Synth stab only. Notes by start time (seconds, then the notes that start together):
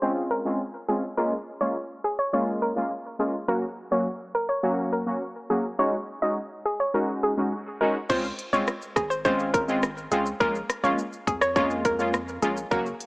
0.02 G#3 C4 C#4 F4
0.45 G#3 C4 C#4 F4
0.88 G#3 C4 C#4 F4
1.17 G#3 A#3 C#4 F4
1.61 G#3 A#3 C#4 F4
2.33 G#3 A#3 C#4 F4
2.76 G#3 A#3 C#4 F4
3.19 G#3 A#3 C#4 F4
3.48 F#3 A#3 C#4 F#4
3.91 F#3 A#3 C#4 F#4
4.63 F#3 A#3 C#4 F#4
5.06 F#3 A#3 C#4 F#4
5.50 F#3 A#3 C#4 F#4
5.79 G#3 C#4 D#4 F#4
6.22 G#3 C#4 D#4 F#4
6.94 G#3 C#4 D#4 F#4
7.37 G#3 C#4 D#4 F#4
7.81 G#3 C#4 D#4 F#4
8.09 G#3 C4 C#4 F4
8.53 G#3 C4 C#4 F4
9.25 G#3 C4 C#4 F4
9.68 G#3 C4 C#4 F4
10.11 G#3 C4 C#4 F4
10.40 G#3 A#3 C#4 F4
10.83 G#3 A#3 C#4 F4
11.56 G#3 A#3 C#4 F4
11.99 G#3 A#3 C#4 F4
12.42 G#3 A#3 C#4 F4
12.71 F#3 A#3 C#4 F#4